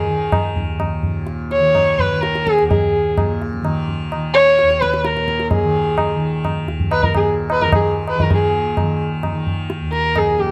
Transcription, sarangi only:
0, 0, Header, 1, 2, 480
1, 0, Start_track
1, 0, Tempo, 473186
1, 1284, Time_signature, 3, 2, 24, 8
1, 5594, Tempo, 464037
1, 10765, End_track
2, 0, Start_track
2, 0, Title_t, "Sarangi"
2, 0, Program_c, 0, 110
2, 0, Note_on_c, 0, 68, 73
2, 559, Note_off_c, 0, 68, 0
2, 1544, Note_on_c, 0, 73, 103
2, 2023, Note_on_c, 0, 71, 88
2, 2038, Note_off_c, 0, 73, 0
2, 2246, Note_on_c, 0, 70, 87
2, 2262, Note_off_c, 0, 71, 0
2, 2561, Note_off_c, 0, 70, 0
2, 2561, Note_on_c, 0, 68, 87
2, 2719, Note_off_c, 0, 68, 0
2, 2725, Note_on_c, 0, 68, 75
2, 3405, Note_off_c, 0, 68, 0
2, 4401, Note_on_c, 0, 73, 111
2, 4873, Note_on_c, 0, 71, 91
2, 4888, Note_off_c, 0, 73, 0
2, 5126, Note_on_c, 0, 70, 87
2, 5142, Note_off_c, 0, 71, 0
2, 5598, Note_off_c, 0, 70, 0
2, 5606, Note_on_c, 0, 68, 80
2, 6285, Note_off_c, 0, 68, 0
2, 7044, Note_on_c, 0, 71, 95
2, 7168, Note_on_c, 0, 70, 85
2, 7184, Note_off_c, 0, 71, 0
2, 7287, Note_off_c, 0, 70, 0
2, 7297, Note_on_c, 0, 68, 74
2, 7403, Note_off_c, 0, 68, 0
2, 7670, Note_on_c, 0, 71, 83
2, 7773, Note_on_c, 0, 70, 82
2, 7788, Note_off_c, 0, 71, 0
2, 7890, Note_off_c, 0, 70, 0
2, 7904, Note_on_c, 0, 68, 67
2, 8007, Note_off_c, 0, 68, 0
2, 8266, Note_on_c, 0, 71, 85
2, 8396, Note_on_c, 0, 70, 85
2, 8411, Note_off_c, 0, 71, 0
2, 8501, Note_off_c, 0, 70, 0
2, 8521, Note_on_c, 0, 68, 76
2, 9180, Note_off_c, 0, 68, 0
2, 10159, Note_on_c, 0, 70, 93
2, 10419, Note_on_c, 0, 68, 85
2, 10434, Note_off_c, 0, 70, 0
2, 10646, Note_on_c, 0, 67, 84
2, 10662, Note_off_c, 0, 68, 0
2, 10765, Note_off_c, 0, 67, 0
2, 10765, End_track
0, 0, End_of_file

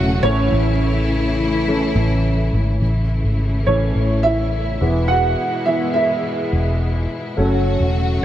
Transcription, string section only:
0, 0, Header, 1, 2, 480
1, 0, Start_track
1, 0, Key_signature, 3, "major"
1, 0, Tempo, 570776
1, 446, Time_signature, 4, 2, 24, 8
1, 6937, End_track
2, 0, Start_track
2, 0, Title_t, "String section"
2, 0, Program_c, 0, 48
2, 0, Note_on_c, 0, 49, 77
2, 0, Note_on_c, 0, 54, 66
2, 0, Note_on_c, 0, 57, 66
2, 0, Note_on_c, 0, 66, 94
2, 189, Note_off_c, 0, 54, 0
2, 189, Note_off_c, 0, 66, 0
2, 212, Note_on_c, 0, 52, 80
2, 215, Note_on_c, 0, 64, 90
2, 2334, Note_off_c, 0, 49, 0
2, 2335, Note_off_c, 0, 57, 0
2, 2347, Note_off_c, 0, 52, 0
2, 2349, Note_off_c, 0, 64, 0
2, 2371, Note_on_c, 0, 49, 64
2, 2372, Note_on_c, 0, 57, 59
2, 2374, Note_on_c, 0, 64, 64
2, 2375, Note_on_c, 0, 52, 61
2, 4032, Note_off_c, 0, 49, 0
2, 4033, Note_off_c, 0, 57, 0
2, 4034, Note_off_c, 0, 52, 0
2, 4051, Note_on_c, 0, 52, 65
2, 4053, Note_on_c, 0, 56, 69
2, 4054, Note_on_c, 0, 47, 72
2, 6177, Note_off_c, 0, 64, 0
2, 6188, Note_off_c, 0, 52, 0
2, 6188, Note_off_c, 0, 56, 0
2, 6189, Note_off_c, 0, 47, 0
2, 6204, Note_on_c, 0, 66, 84
2, 6206, Note_on_c, 0, 49, 64
2, 6207, Note_on_c, 0, 57, 58
2, 6210, Note_on_c, 0, 54, 69
2, 6937, Note_off_c, 0, 49, 0
2, 6937, Note_off_c, 0, 54, 0
2, 6937, Note_off_c, 0, 57, 0
2, 6937, Note_off_c, 0, 66, 0
2, 6937, End_track
0, 0, End_of_file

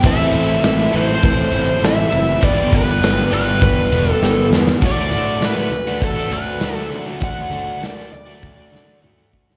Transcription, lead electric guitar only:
0, 0, Header, 1, 2, 480
1, 0, Start_track
1, 0, Tempo, 598802
1, 35, Time_signature, 4, 2, 24, 8
1, 7671, End_track
2, 0, Start_track
2, 0, Title_t, "Lead electric guitar"
2, 0, Program_c, 0, 29
2, 55, Note_on_c, 0, 76, 102
2, 767, Note_on_c, 0, 72, 94
2, 782, Note_off_c, 0, 76, 0
2, 1490, Note_on_c, 0, 76, 94
2, 1496, Note_off_c, 0, 72, 0
2, 1955, Note_off_c, 0, 76, 0
2, 1958, Note_on_c, 0, 74, 93
2, 2198, Note_off_c, 0, 74, 0
2, 2198, Note_on_c, 0, 71, 87
2, 2668, Note_off_c, 0, 71, 0
2, 2678, Note_on_c, 0, 71, 76
2, 3311, Note_off_c, 0, 71, 0
2, 3311, Note_on_c, 0, 69, 76
2, 3596, Note_off_c, 0, 69, 0
2, 3895, Note_on_c, 0, 74, 103
2, 4368, Note_on_c, 0, 71, 87
2, 4371, Note_off_c, 0, 74, 0
2, 4837, Note_off_c, 0, 71, 0
2, 4841, Note_on_c, 0, 69, 85
2, 5073, Note_off_c, 0, 69, 0
2, 5076, Note_on_c, 0, 71, 67
2, 5421, Note_off_c, 0, 71, 0
2, 5421, Note_on_c, 0, 69, 67
2, 5518, Note_off_c, 0, 69, 0
2, 5803, Note_on_c, 0, 78, 100
2, 6290, Note_off_c, 0, 78, 0
2, 6295, Note_on_c, 0, 74, 75
2, 6510, Note_off_c, 0, 74, 0
2, 6520, Note_on_c, 0, 74, 68
2, 7207, Note_off_c, 0, 74, 0
2, 7671, End_track
0, 0, End_of_file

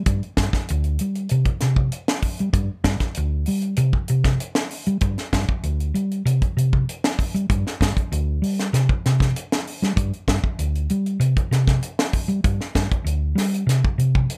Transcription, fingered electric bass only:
0, 0, Header, 1, 3, 480
1, 0, Start_track
1, 0, Tempo, 619195
1, 52, Time_signature, 4, 2, 24, 8
1, 11145, End_track
2, 0, Start_track
2, 0, Title_t, "Fingered electric bass"
2, 0, Program_c, 0, 33
2, 47, Note_on_c, 0, 43, 94
2, 156, Note_off_c, 0, 43, 0
2, 285, Note_on_c, 0, 43, 99
2, 395, Note_off_c, 0, 43, 0
2, 544, Note_on_c, 0, 38, 94
2, 747, Note_off_c, 0, 38, 0
2, 781, Note_on_c, 0, 55, 76
2, 985, Note_off_c, 0, 55, 0
2, 1018, Note_on_c, 0, 48, 97
2, 1122, Note_off_c, 0, 48, 0
2, 1255, Note_on_c, 0, 48, 89
2, 1461, Note_off_c, 0, 48, 0
2, 1862, Note_on_c, 0, 55, 75
2, 1956, Note_off_c, 0, 55, 0
2, 1960, Note_on_c, 0, 43, 97
2, 2072, Note_off_c, 0, 43, 0
2, 2201, Note_on_c, 0, 43, 103
2, 2312, Note_off_c, 0, 43, 0
2, 2460, Note_on_c, 0, 38, 94
2, 2664, Note_off_c, 0, 38, 0
2, 2695, Note_on_c, 0, 55, 78
2, 2901, Note_off_c, 0, 55, 0
2, 2926, Note_on_c, 0, 48, 111
2, 3036, Note_off_c, 0, 48, 0
2, 3175, Note_on_c, 0, 48, 97
2, 3381, Note_off_c, 0, 48, 0
2, 3774, Note_on_c, 0, 55, 78
2, 3875, Note_off_c, 0, 55, 0
2, 3884, Note_on_c, 0, 43, 85
2, 3994, Note_off_c, 0, 43, 0
2, 4133, Note_on_c, 0, 43, 104
2, 4239, Note_off_c, 0, 43, 0
2, 4368, Note_on_c, 0, 38, 84
2, 4577, Note_off_c, 0, 38, 0
2, 4607, Note_on_c, 0, 55, 85
2, 4816, Note_off_c, 0, 55, 0
2, 4848, Note_on_c, 0, 48, 103
2, 4956, Note_off_c, 0, 48, 0
2, 5091, Note_on_c, 0, 48, 90
2, 5298, Note_off_c, 0, 48, 0
2, 5693, Note_on_c, 0, 55, 78
2, 5794, Note_off_c, 0, 55, 0
2, 5812, Note_on_c, 0, 43, 93
2, 5919, Note_off_c, 0, 43, 0
2, 6056, Note_on_c, 0, 43, 92
2, 6160, Note_off_c, 0, 43, 0
2, 6293, Note_on_c, 0, 38, 92
2, 6499, Note_off_c, 0, 38, 0
2, 6526, Note_on_c, 0, 55, 78
2, 6736, Note_off_c, 0, 55, 0
2, 6768, Note_on_c, 0, 48, 101
2, 6876, Note_off_c, 0, 48, 0
2, 7020, Note_on_c, 0, 48, 97
2, 7223, Note_off_c, 0, 48, 0
2, 7615, Note_on_c, 0, 55, 79
2, 7715, Note_off_c, 0, 55, 0
2, 7722, Note_on_c, 0, 43, 102
2, 7832, Note_off_c, 0, 43, 0
2, 7966, Note_on_c, 0, 43, 101
2, 8074, Note_off_c, 0, 43, 0
2, 8207, Note_on_c, 0, 38, 84
2, 8415, Note_off_c, 0, 38, 0
2, 8453, Note_on_c, 0, 55, 86
2, 8659, Note_off_c, 0, 55, 0
2, 8679, Note_on_c, 0, 48, 99
2, 8791, Note_off_c, 0, 48, 0
2, 8924, Note_on_c, 0, 48, 93
2, 9134, Note_off_c, 0, 48, 0
2, 9520, Note_on_c, 0, 55, 84
2, 9626, Note_off_c, 0, 55, 0
2, 9643, Note_on_c, 0, 43, 95
2, 9753, Note_off_c, 0, 43, 0
2, 9883, Note_on_c, 0, 43, 99
2, 9992, Note_off_c, 0, 43, 0
2, 10112, Note_on_c, 0, 38, 82
2, 10327, Note_off_c, 0, 38, 0
2, 10351, Note_on_c, 0, 55, 81
2, 10566, Note_off_c, 0, 55, 0
2, 10594, Note_on_c, 0, 48, 99
2, 10707, Note_off_c, 0, 48, 0
2, 10838, Note_on_c, 0, 48, 88
2, 11050, Note_off_c, 0, 48, 0
2, 11145, End_track
3, 0, Start_track
3, 0, Title_t, "Muted fingered electric bass strokes"
3, 3041, Note_on_c, 9, 29, 43
3, 3118, Note_off_c, 9, 29, 0
3, 6173, Note_on_c, 9, 29, 31
3, 6251, Note_off_c, 9, 29, 0
3, 6891, Note_on_c, 9, 29, 39
3, 6968, Note_off_c, 9, 29, 0
3, 11145, End_track
0, 0, End_of_file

